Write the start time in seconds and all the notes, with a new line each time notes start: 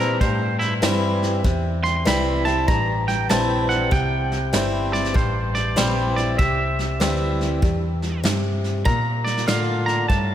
Already playing: A#2 C3 E3 G3 C4 E4
0.00 A#4
0.21 G2 A2 C5, kick, snare
0.59 E4, snare
0.82 G2 E3 G3 C4 E4, snare, hi-hat pedal
1.23 snare
1.44 E2 C3, kick, snare
1.84 C6, snare
2.05 C2 E3 G3 C4 E4 B5, snare, hi-hat pedal
2.45 C4 E4 A5, snare
2.68 A1 G2 A#5, kick, snare
3.08 G5, snare
3.29 A#1 E3 G3 C4 E4 A5, snare, hi-hat pedal
3.69 F#5, snare
3.91 C2 C3 G5, kick, snare
4.32 snare
4.53 G1 E3 G3 C4 E4, snare, hi-hat pedal
4.93 D5, snare
5.04 snare
5.14 A1 G2 C5, kick, snare
5.55 D5, snare
5.76 A#1 E3 G3 C4 E4 C5, snare, hi-hat pedal
6.16 D5, snare
6.38 C2 C3 E5, kick, snare
6.79 snare
7.00 D2 E3 G3 C4 E4, snare, hi-hat pedal
7.41 snare
7.62 E2 G2, kick, snare
8.02 snare
8.24 G2 C3, snare, hi-hat pedal
8.64 snare
8.85 A#2 A#5, kick, snare
9.24 D5, snare
9.37 snare
9.48 A2 D3 D4 F4 F5, snare, hi-hat pedal
9.86 A#5, snare
10.08 G2 A2 A5, kick, snare